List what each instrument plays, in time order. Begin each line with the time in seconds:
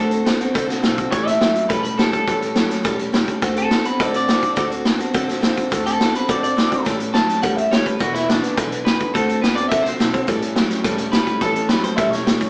Already playing: upright bass D2, steel-string acoustic guitar D3 A3 C4 F#4, clean electric guitar A4
0.00 steel-string acoustic guitar A4
0.11 steel-string acoustic guitar C4 F#4 A4, closed hi-hat
0.25 upright bass D2, clean electric guitar D3 B3, steel-string acoustic guitar A3 C4 F#4 A4, snare, closed hi-hat
0.39 steel-string acoustic guitar C4 F#4 A4, closed hi-hat
0.54 upright bass C2, steel-string acoustic guitar D3 A3 C4 F#4 A4, kick, closed hi-hat
0.68 steel-string acoustic guitar C4 F#4 A4, snare, closed hi-hat
0.82 upright bass B1, clean electric guitar D3, steel-string acoustic guitar A3 C4 F#4 A4, snare, closed hi-hat
0.98 steel-string acoustic guitar C4 F#4 A4, kick, closed hi-hat
1.11 upright bass A1, steel-string acoustic guitar A2 E3 G3 C#4 G4 A4, clean electric guitar C#5, kick, closed hi-hat
1.27 steel-string acoustic guitar G3 C#4 G4 A4, clean electric guitar E5, snare, closed hi-hat
1.40 clean electric guitar A2 F#3, steel-string acoustic guitar G3 C#4 G4 A4, snare, closed hi-hat
1.55 steel-string acoustic guitar G3 C#4 G4 A4, closed hi-hat
1.69 upright bass E1, steel-string acoustic guitar A2 E3 G3 C#4 G4 A4, clean electric guitar B4, kick, closed hi-hat
1.83 steel-string acoustic guitar G3 C#4 G4 A4, clean electric guitar B4, closed hi-hat
1.97 clean electric guitar A2 A4, steel-string acoustic guitar G3 C#4 G4 A4, snare, closed hi-hat
2.12 steel-string acoustic guitar G3 C#4 G4 A4, clean electric guitar A4, kick, closed hi-hat
2.27 upright bass A1, steel-string acoustic guitar A2 E3 G3 C#4 G4 A4, kick, closed hi-hat
2.41 steel-string acoustic guitar G3 C#4 G4 A4, closed hi-hat
2.55 clean electric guitar A2 F#3, steel-string acoustic guitar G3 C#4 G4 A4, snare, closed hi-hat
2.69 steel-string acoustic guitar G3 C#4 G4 A4, snare, closed hi-hat
2.83 upright bass E1, steel-string acoustic guitar A2 E3 G3 C#4 G4 A4, kick, closed hi-hat
2.98 steel-string acoustic guitar G3 C#4 G4 A4, closed hi-hat
3.12 clean electric guitar A2, steel-string acoustic guitar G3 C#4 G4 A4, snare, closed hi-hat
3.27 steel-string acoustic guitar G3 C#4 G4 A4, kick, closed hi-hat
3.42 upright bass D2, steel-string acoustic guitar D3 A3 C4 F#4 A4, kick, snare, closed hi-hat
3.56 steel-string acoustic guitar C4 F#4 A4, clean electric guitar A4, closed hi-hat
3.71 clean electric guitar D3 B3, steel-string acoustic guitar A3 C4 F#4 A4, snare, closed hi-hat
3.85 steel-string acoustic guitar C4 F#4 A4, clean electric guitar B4, closed hi-hat
3.99 upright bass A1, steel-string acoustic guitar D3 A3 C4 F#4 A4, clean electric guitar D5, kick, closed hi-hat
4.13 steel-string acoustic guitar C4 F#4 A4, clean electric guitar D5, closed hi-hat
4.27 clean electric guitar D3, steel-string acoustic guitar A3 C4 F#4 A4, snare, closed hi-hat
4.42 steel-string acoustic guitar C4 F#4 A4, kick, closed hi-hat
4.55 upright bass D2, steel-string acoustic guitar D3 A3 C4 F#4 A4, kick, snare, closed hi-hat
4.70 steel-string acoustic guitar C4 F#4 A4, closed hi-hat
4.85 clean electric guitar D3 B3, steel-string acoustic guitar A3 C4 F#4 A4, snare, closed hi-hat
4.99 steel-string acoustic guitar C4 F#4 A4, closed hi-hat
5.14 upright bass A1, steel-string acoustic guitar D3 A3 C4 F#4 A4, kick, closed hi-hat
5.28 steel-string acoustic guitar C4 F#4 A4, snare, closed hi-hat
5.41 clean electric guitar D3, steel-string acoustic guitar A3 C4 F#4 A4, snare, closed hi-hat
5.55 steel-string acoustic guitar C4 F#4 A4, kick, closed hi-hat
5.70 upright bass D2, steel-string acoustic guitar D3 A3 C4 F#4 A4, kick, snare, closed hi-hat
5.84 steel-string acoustic guitar C4 F#4 A4, clean electric guitar A4, closed hi-hat
5.99 clean electric guitar D3 B3, steel-string acoustic guitar A3 C4 F#4 A4, snare, closed hi-hat
6.13 steel-string acoustic guitar C4 F#4 A4, clean electric guitar B4, closed hi-hat
6.28 upright bass A1, steel-string acoustic guitar D3 A3 C4 F#4 A4, clean electric guitar D5, kick, closed hi-hat
6.42 steel-string acoustic guitar C4 F#4 A4, clean electric guitar D5, closed hi-hat
6.56 clean electric guitar D3, steel-string acoustic guitar A3 C4 F#4 A4, snare, closed hi-hat
6.70 steel-string acoustic guitar C4 F#4 A4, kick, closed hi-hat
6.85 upright bass A1, steel-string acoustic guitar A2 E3 G3 C#4 G4 A4, kick, snare, closed hi-hat
6.99 steel-string acoustic guitar G3 C#4 G4 A4, closed hi-hat
7.13 clean electric guitar A2 F#3 A5, steel-string acoustic guitar G3 C#4 G4 A4, snare, closed hi-hat
7.27 steel-string acoustic guitar G3 C#4 G4 A4, snare, closed hi-hat
7.42 upright bass E2, steel-string acoustic guitar A2 E3 G3 C#4 G4 A4, clean electric guitar F#5, kick, closed hi-hat
7.56 steel-string acoustic guitar G3 C#4 G4 A4, clean electric guitar E5, closed hi-hat
7.70 clean electric guitar A2 C#5, steel-string acoustic guitar G3 C#4 G4 A4, snare, closed hi-hat
7.85 steel-string acoustic guitar G3 C#4 G4 A4, clean electric guitar B4, kick, closed hi-hat
7.99 upright bass E1, clean electric guitar E2 B2 F#4, steel-string acoustic guitar E3 G#3 D4 E4 B4, kick, closed hi-hat
8.14 steel-string acoustic guitar D4 E4 B4, clean electric guitar E4, snare, closed hi-hat
8.28 clean electric guitar E2 C#3 D4, steel-string acoustic guitar G#3 D4 E4 B4, snare, closed hi-hat
8.43 steel-string acoustic guitar D4 E4 B4, snare, closed hi-hat
8.56 upright bass B1, clean electric guitar E2 D3, steel-string acoustic guitar E3 G#3 D4 E4 B4, kick, closed hi-hat
8.72 steel-string acoustic guitar D4 E4 B4, closed hi-hat
8.85 clean electric guitar E2 D3 B4, steel-string acoustic guitar G#3 D4 E4 B4, snare, closed hi-hat
9.00 steel-string acoustic guitar D4 E4 B4, kick, closed hi-hat
9.14 upright bass D2, steel-string acoustic guitar D3 A3 C4 F#4 A4, clean electric guitar A4, kick, snare, closed hi-hat
9.28 steel-string acoustic guitar C4 F#4 A4, closed hi-hat
9.42 upright bass D2, clean electric guitar D3 B3 B4, steel-string acoustic guitar A3 C4 F#4 A4, snare, closed hi-hat
9.55 steel-string acoustic guitar C4 F#4 A4, clean electric guitar D5, closed hi-hat
9.69 upright bass C2, steel-string acoustic guitar D3 A3 C4 F#4 A4, clean electric guitar E5, kick, closed hi-hat
9.82 steel-string acoustic guitar F#4 A4, clean electric guitar C5, snare, closed hi-hat
9.87 steel-string acoustic guitar C4
9.99 upright bass B1, clean electric guitar D3, steel-string acoustic guitar A3 C4 F#4 A4, snare, closed hi-hat
10.13 steel-string acoustic guitar C4 F#4 A4, kick, closed hi-hat
10.27 upright bass A1, steel-string acoustic guitar A2 E3 G3 C#4 E4 A4, kick, closed hi-hat
10.41 steel-string acoustic guitar G3 C#4 E4 A4, closed hi-hat
10.55 clean electric guitar A2 F#3, steel-string acoustic guitar G3 C#4 E4 A4, snare, closed hi-hat
10.70 steel-string acoustic guitar G3 C#4 E4 A4, snare, closed hi-hat
10.84 upright bass E1, steel-string acoustic guitar A2 E3 G3 C#4 E4 A4, kick, closed hi-hat
10.98 steel-string acoustic guitar G3 C#4 E4 A4, closed hi-hat
11.12 clean electric guitar A2 B4, steel-string acoustic guitar G3 C#4 E4 A4, snare, closed hi-hat
11.27 steel-string acoustic guitar G3 C#4 E4 A4, kick, closed hi-hat
11.41 upright bass A1, steel-string acoustic guitar A2 E3 G3 C#4 E4 A4, clean electric guitar A4, kick, snare, closed hi-hat
11.56 steel-string acoustic guitar G3 C#4 E4 A4, closed hi-hat
11.69 clean electric guitar A2 F#3 B4, steel-string acoustic guitar G3 C#4 E4 A4, snare, closed hi-hat
11.84 steel-string acoustic guitar G3 C#4 E4 A4, clean electric guitar C5, closed hi-hat
11.97 upright bass E1, steel-string acoustic guitar A2 E3 G3 C#4 E4 A4, clean electric guitar E5, kick, closed hi-hat
12.11 steel-string acoustic guitar G3 C#4 E4 A4, clean electric guitar C#5, snare, closed hi-hat
12.26 clean electric guitar A2, steel-string acoustic guitar G3 C#4 E4 A4, snare, closed hi-hat
12.40 steel-string acoustic guitar G3 C#4 E4 A4, kick, closed hi-hat